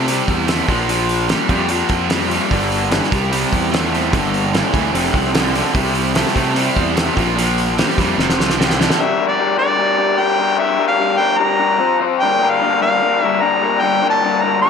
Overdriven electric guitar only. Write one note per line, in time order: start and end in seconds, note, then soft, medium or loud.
0.09 0.45 C3 medium
0.09 0.45 G3 medium
0.48 0.67 C3 medium
0.48 0.67 A3 medium
0.69 0.87 A#2 medium
0.69 0.87 F3 medium
0.88 1.25 A#2 medium
0.88 1.25 F3 medium
1.30 1.48 A#2 medium
1.30 1.48 G3 loud
1.49 1.68 A#2 medium
1.49 1.68 G3 medium
1.69 2.06 A#2 medium
1.69 2.06 F3 medium
2.09 2.28 A#2 medium
2.09 2.28 G3 medium
2.29 2.48 A#2 medium
2.29 2.48 G3 medium
2.50 2.87 G2 medium
2.50 2.87 D3 medium
2.91 3.09 G2 medium
2.91 3.09 E3 medium
3.12 3.30 C3 medium
3.12 3.30 G3 medium
3.31 3.68 C3 medium
3.31 3.68 G3 medium
3.72 3.90 C3 medium
3.72 3.91 A3 medium
3.93 4.11 C3 medium
3.93 4.11 A3 medium
4.13 4.49 G2 medium
4.13 4.50 D3 medium
4.54 4.72 G2 medium
4.54 4.72 E3 medium
4.73 4.91 G2 medium
4.73 4.92 E3 medium
4.94 5.30 F2 medium
4.94 5.30 C3 loud
5.33 5.52 F2 medium
5.33 5.52 D3 medium
5.54 5.72 F2 medium
5.54 5.72 D3 medium
5.74 6.11 C3 medium
5.74 6.11 G3 medium
6.15 6.33 C3 medium
6.15 6.33 A3 medium
6.34 6.53 C3 medium
6.34 6.53 A3 medium
6.55 6.92 C3 medium
6.55 6.92 G3 medium
6.97 7.15 C3 medium
6.97 7.15 A3 medium
7.16 7.34 A#2 medium
7.16 7.35 F3 medium
7.36 7.73 A#2 medium
7.36 7.73 F3 medium
7.78 7.96 A#2 medium
7.78 7.96 G3 medium
7.98 8.16 A#2 medium
7.98 8.16 G3 medium
8.19 8.54 F2 medium
8.19 8.55 C3 medium
8.60 8.77 F2 medium
8.60 8.77 D3 medium
8.80 8.97 F2 medium
8.80 8.97 D3 medium
9.00 9.18 G3 loud
9.00 9.19 D4 loud
9.00 9.19 G4 loud
9.00 9.19 A#4 loud
9.18 9.38 G3 medium
9.18 9.38 D4 medium
9.18 9.39 G4 medium
9.18 9.40 A#4 loud
9.39 9.57 G3 medium
9.39 9.57 D4 medium
9.39 9.58 G4 loud
9.39 9.59 A#4 medium
9.58 9.77 G3 loud
9.58 9.78 D4 loud
9.58 9.78 G4 loud
9.58 9.78 A#4 loud
9.78 9.97 G3 medium
9.78 9.97 D4 medium
9.78 9.97 G4 medium
9.78 9.99 A#4 loud
9.98 10.17 G3 medium
9.98 10.17 D4 medium
9.98 10.18 G4 loud
9.98 10.18 A#4 medium
10.18 10.38 G3 medium
10.18 10.38 D4 medium
10.18 10.39 G4 loud
10.18 10.39 A#4 loud
10.39 10.57 G3 medium
10.39 10.57 D4 loud
10.39 10.59 G4 loud
10.39 10.59 A#4 loud
10.59 10.77 G3 loud
10.59 10.78 D4 loud
10.59 10.78 G4 loud
10.59 10.79 A#4 loud
10.78 10.98 G3 medium
10.78 10.99 D4 loud
10.78 10.99 G4 medium
10.78 11.00 A#4 loud
11.00 11.18 G3 medium
11.00 11.18 D4 loud
11.00 11.18 G4 medium
11.00 11.19 A#4 medium
11.19 11.38 G3 loud
11.19 11.39 D4 loud
11.19 11.39 G4 loud
11.19 11.39 A#4 loud
11.40 11.58 G3 medium
11.40 11.58 D4 loud
11.40 11.59 G4 loud
11.40 11.59 A#4 medium
11.59 11.79 G3 medium
11.59 11.79 D4 medium
11.59 11.79 G4 medium
11.59 11.79 A#4 medium
11.79 11.99 F3 medium
11.79 11.99 C4 loud
11.79 11.99 F4 loud
11.79 11.99 C5 loud
12.00 12.19 F3 loud
12.00 12.20 C4 loud
12.00 12.20 F4 loud
12.00 12.20 C5 loud
12.21 12.40 G2 loud
12.21 12.40 D3 loud
12.21 12.41 G3 loud
12.21 12.42 A#3 loud
12.21 12.42 D4 loud
12.21 12.43 A#4 loud
12.40 12.60 G2 loud
12.40 12.61 D3 loud
12.40 12.62 G3 medium
12.40 12.62 A#3 loud
12.40 12.62 D4 medium
12.40 12.62 A#4 loud
12.62 12.79 G2 medium
12.62 12.80 D3 loud
12.62 12.80 G3 loud
12.62 12.81 A#3 loud
12.62 12.81 D4 loud
12.62 12.81 A#4 loud
12.80 13.00 G2 loud
12.80 13.00 D3 loud
12.80 13.00 G3 loud
12.80 13.01 A#3 loud
12.80 13.02 D4 loud
12.80 13.02 A#4 loud
13.01 13.21 G2 medium
13.01 13.21 D3 medium
13.01 13.22 G3 medium
13.01 13.22 A#3 loud
13.01 13.22 D4 loud
13.01 13.23 A#4 loud
13.22 13.40 G2 medium
13.22 13.41 D3 medium
13.22 13.41 G3 medium
13.22 13.42 A#3 medium
13.22 13.42 D4 medium
13.22 13.42 A#4 medium
13.41 13.61 G2 medium
13.41 13.62 D3 loud
13.41 13.62 G3 loud
13.41 13.63 A#3 loud
13.41 13.63 D4 loud
13.41 13.63 A#4 loud
13.62 13.81 G2 medium
13.62 13.82 D3 medium
13.62 13.82 G3 medium
13.62 13.82 A#3 loud
13.62 13.82 D4 loud
13.62 13.83 A#4 loud
13.82 14.01 G2 loud
13.82 14.01 D3 loud
13.82 14.01 G3 loud
13.82 14.02 A#3 loud
13.82 14.02 D4 loud
13.82 14.03 A#4 loud
14.02 14.21 G2 medium
14.02 14.23 D3 medium
14.02 14.23 G3 medium
14.02 14.24 A#3 medium
14.02 14.24 D4 loud
14.02 14.24 A#4 loud
14.23 14.42 G2 medium
14.23 14.42 D3 medium
14.23 14.43 G3 loud
14.23 14.43 A#3 loud
14.23 14.44 D4 loud
14.23 14.44 A#4 loud
14.44 14.61 G2 loud
14.44 14.62 D3 loud
14.44 14.63 G3 loud
14.44 14.63 A#3 loud
14.44 14.64 D4 loud
14.44 14.64 A#4 loud
14.62 14.70 G2 medium
14.62 14.70 D3 medium
14.62 14.70 G3 medium
14.62 14.70 A#3 medium
14.62 14.70 D4 loud
14.62 14.70 A#4 medium